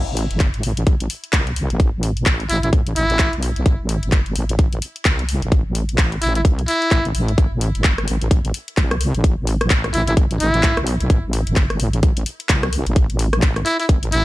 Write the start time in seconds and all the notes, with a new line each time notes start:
0.07 A1
0.17 open hi-hat
0.31 G1, closed hi-hat
0.40 kick, clap, closed hi-hat
0.54 closed hi-hat
0.63 A1, open hi-hat
0.77 closed hi-hat
0.87 kick, closed hi-hat
1.00 closed hi-hat
1.10 open hi-hat
1.24 closed hi-hat
1.33 C2, kick, clap, closed hi-hat
1.47 closed hi-hat
1.56 open hi-hat
1.70 A1, closed hi-hat
1.80 kick, closed hi-hat
1.93 A1
2.03 open hi-hat
2.17 closed hi-hat
2.26 A1, kick, clap, closed hi-hat
2.40 closed hi-hat
2.49 A1 E4, open hi-hat
2.63 E4, closed hi-hat
2.73 kick, closed hi-hat
2.87 closed hi-hat
2.96 A1 E4, open hi-hat
3.10 closed hi-hat
3.19 kick, clap, closed hi-hat
3.33 B1, closed hi-hat
3.43 open hi-hat
3.56 B1, closed hi-hat
3.66 A1, kick, closed hi-hat
3.79 A1
3.89 open hi-hat
4.03 G1, closed hi-hat
4.12 kick, clap, closed hi-hat
4.26 closed hi-hat
4.35 A1, open hi-hat
4.49 closed hi-hat
4.59 kick, closed hi-hat
4.73 closed hi-hat
4.82 open hi-hat
4.96 closed hi-hat
5.05 C2, kick, clap, closed hi-hat
5.19 closed hi-hat
5.29 open hi-hat
5.42 A1, closed hi-hat
5.52 kick, closed hi-hat
5.66 A1
5.75 open hi-hat
5.89 closed hi-hat
5.98 A1, kick, clap, closed hi-hat
6.12 closed hi-hat
6.22 A1 E4, open hi-hat
6.35 E4, closed hi-hat
6.45 C2, kick, closed hi-hat
6.59 closed hi-hat
6.68 E4, open hi-hat
6.82 closed hi-hat
6.91 A1, kick, clap, closed hi-hat
7.05 closed hi-hat
7.15 A1, open hi-hat
7.28 closed hi-hat
7.38 A1, kick, closed hi-hat
7.52 A1
7.61 open hi-hat
7.75 G1, closed hi-hat
7.84 kick, clap, closed hi-hat
7.98 cross-stick, closed hi-hat
8.08 A1, open hi-hat
8.22 closed hi-hat
8.31 kick, closed hi-hat
8.45 closed hi-hat
8.54 open hi-hat
8.68 closed hi-hat
8.77 C2, kick, clap, closed hi-hat
8.91 cross-stick, closed hi-hat
9.01 open hi-hat
9.14 A1, closed hi-hat
9.24 kick, closed hi-hat
9.38 A1
9.47 open hi-hat
9.61 cross-stick, closed hi-hat
9.70 A1, kick, clap, closed hi-hat
9.84 cross-stick, closed hi-hat
9.94 A1 E4, open hi-hat
10.07 E4, closed hi-hat
10.17 kick, closed hi-hat
10.31 closed hi-hat
10.40 A1 E4, open hi-hat
10.54 closed hi-hat
10.63 kick, clap, closed hi-hat
10.77 B1, cross-stick, closed hi-hat
10.87 open hi-hat
11.00 B1, closed hi-hat
11.10 A1, kick, closed hi-hat
11.24 A1
11.33 open hi-hat
11.47 G1, closed hi-hat
11.56 kick, clap, closed hi-hat
11.70 cross-stick, closed hi-hat
11.80 A1, open hi-hat
11.93 closed hi-hat
12.03 kick, closed hi-hat
12.17 closed hi-hat
12.26 open hi-hat
12.40 closed hi-hat
12.49 C2, kick, clap, closed hi-hat
12.63 cross-stick, closed hi-hat
12.73 open hi-hat
12.87 A1, closed hi-hat
12.96 kick, closed hi-hat
13.10 A1, closed hi-hat
13.19 open hi-hat
13.33 cross-stick, closed hi-hat
13.42 A1, kick, clap, closed hi-hat
13.56 cross-stick, closed hi-hat
13.66 E4, open hi-hat
13.80 E4, open hi-hat
13.89 A1, kick, closed hi-hat
14.03 closed hi-hat
14.12 E4, open hi-hat